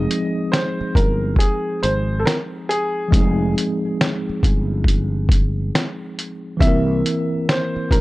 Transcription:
Already playing: F3 G#3 C4 D#4 G#4 D#5
0.11 closed hi-hat
0.52 C5, snare, closed hi-hat
0.81 muted fretless electric bass stroke
0.95 G1 A#4, kick, closed hi-hat
1.36 G#4, kick
1.40 closed hi-hat
1.83 G#1 C5, closed hi-hat
2.20 A4
2.25 A#4, snare, closed hi-hat
2.69 G#4, closed hi-hat
3.08 F3 G#3
3.12 F1 C4 D#4, kick, closed hi-hat
3.18 G#4
3.58 closed hi-hat
4.01 snare, closed hi-hat
4.29 muted fretless electric bass stroke
4.43 G1, kick, closed hi-hat
4.84 kick
4.88 closed hi-hat
5.29 kick, closed hi-hat
5.75 snare, closed hi-hat
6.19 closed hi-hat
6.57 C2 E3 A#3 E5, kick
6.62 C4 E4, closed hi-hat
6.67 A#4
7.06 closed hi-hat
7.49 C5, snare, closed hi-hat
7.76 muted fretless electric bass stroke
7.91 A#1 A#4, kick, closed hi-hat

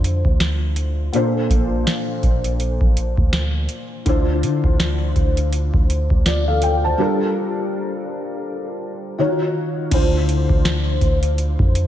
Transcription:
Already playing: F2 D3 D4 E4 F4 C5
0.04 closed hi-hat
0.25 D2, kick
0.40 snare, closed hi-hat
0.76 closed hi-hat
1.13 A#2 A#3 D4 A4 C5, closed hi-hat
1.50 A#1, kick, closed hi-hat
1.87 snare, closed hi-hat
2.23 A#1, kick, closed hi-hat
2.44 closed hi-hat
2.60 closed hi-hat
2.81 A#1, kick
2.97 closed hi-hat
3.17 D2, kick
3.33 snare, closed hi-hat
3.69 closed hi-hat
4.05 D2 D3 D4 E4 F4 C5, kick, closed hi-hat
4.43 D3, closed hi-hat
4.64 D2, kick
4.80 snare, closed hi-hat
5.16 D2, kick, closed hi-hat
5.37 closed hi-hat
5.53 closed hi-hat
5.74 D2, kick
5.90 closed hi-hat
6.10 D2, kick
6.26 F4 D5, snare, closed hi-hat
6.48 A4 F5
6.62 G5, closed hi-hat
6.84 C5 A5
6.98 G3 D4 F4 A4 A#4
9.18 D#3 D#4 F4 F#4 C#5
9.91 D2 D3 D4 E4 F4 C5, kick, closed hi-hat, crash
10.29 closed hi-hat
10.49 D2, kick
10.65 snare, closed hi-hat
11.01 D2, kick, closed hi-hat
11.23 closed hi-hat
11.38 closed hi-hat
11.59 F2, kick
11.75 closed hi-hat

